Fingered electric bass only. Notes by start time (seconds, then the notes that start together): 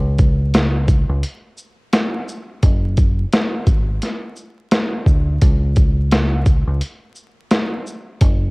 Already playing: C#2
1.09 C#2
2.63 F#1
3.67 G#1
5.07 D2
5.42 C#2
6.67 C#2
8.22 F#1